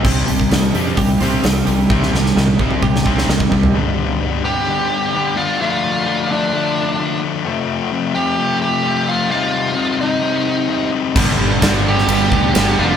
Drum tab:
CC |x---------------|----------------|----------------|----------------|
RD |----------------|----------------|----------------|----------------|
HH |--o-o-o-o-o-o-o-|----------------|----------------|----------------|
SD |----o-----o-o---|-oooo----o-oo---|----------------|----------------|
T1 |----------------|o---------------|----------------|----------------|
T2 |----------------|-----o-o--------|----------------|----------------|
FT |----------------|---------------o|----------------|----------------|
BD |o--o----o-------|o-----o-o-o--oo-|----------------|----------------|

CC |----------------|----------------|x---------------|
RD |----------------|----------------|----b---b---b---|
HH |----------------|----------------|----------------|
SD |----------------|----------------|-o--o--o----o---|
T1 |----------------|----------------|----------------|
T2 |----------------|----------------|----------------|
FT |----------------|----------------|----------------|
BD |----------------|----------------|o---o-----o-----|